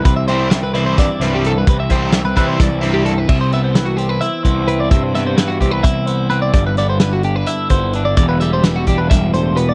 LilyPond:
<<
  \new Staff \with { instrumentName = "Clean electric guitar" } { \time 7/8 \key c \major \tempo 4 = 129 b'16 e''16 c''8 e''16 b'16 b'16 c''16 d''8 b'16 g'16 a'16 b'16 | b'16 e''16 c''8 e''16 b'16 b'16 c''16 d''8 b'16 g'16 a'16 b'16 | e''16 c''16 e''16 c''16 b'16 fis'16 g'16 b'16 e''8 c''8 b'16 d''16 | e''16 c''16 e''16 c''16 b'16 fis'16 g'16 b'16 e''8 c''8 b'16 d''16 |
d''16 b'16 d''16 c''16 b'16 fis'16 g'16 b'16 e''8 c''8 b'16 d''16 | d''16 b'16 e''16 c''16 b'16 fis'16 g'16 b'16 e''8 c''8 b'16 d''16 | }
  \new Staff \with { instrumentName = "Clean electric guitar" } { \time 7/8 \key c \major << { e'8 c'4 e'2~ | e'8 c'4 e'2~ | e'8 b4 c'8 e'8 b8 c'8 | r8 b4 c'8 e'8 b8 c'8 |
r8 b4 d'8 e'8 b8 d'8 | r8 g4 d'2 | } \\ { c4. e4 g,4 | c4. e4 g,4 | c4 e2~ e8 | c4 e2~ e8 |
g,4 d2~ d8 | e,4 e4 g,8 a,8 b,8 | } >> }
  \new Staff \with { instrumentName = "Overdriven electric guitar" } { \time 7/8 \key c \major r8 <e g c' e'>8 r8 <e g c' e'>8 r8 <e g c' e'>8 r8 | r8 <e g c' e'>8 r8 <e g c' e'>8 r8 <e g c' e'>8 r8 | r2. r8 | r2. r8 |
r2. r8 | r2. r8 | }
  \new Staff \with { instrumentName = "Picked electric bass" } { \clef bass \time 7/8 \key c \major c,2 g,16 r16 c,4 | c,8 c,4 c8 c,4. | c,2 r8 c,4 | g,4. c,8 c,4. |
g,,2 r8 g,,4 | e,,4. e,,8 e,,4. | }
  \new DrumStaff \with { instrumentName = "Drums" } \drummode { \time 7/8 <hh bd>8 hh8 <hh sn>8 hh8 <hh bd sn>8 <hh sn>8 hh8 | <hh bd>8 <hh bd>8 <hh sn>8 <hh bd>8 <hh bd>8 hh8 hh8 | <cymc bd>8 hh8 <hh sn>8 hh8 hh8 <hh bd>8 hh8 | <hh bd>8 <hh sn>8 <hh sn>8 <hh bd>8 <hh bd>8 hh8 hh8 |
<hh bd>8 <hh sn>8 <hh sn>8 hh8 hh8 <hh bd>8 hh8 | <hh bd>8 hh8 <hh sn>8 <hh bd>8 <hh bd>8 hh8 hh8 | }
>>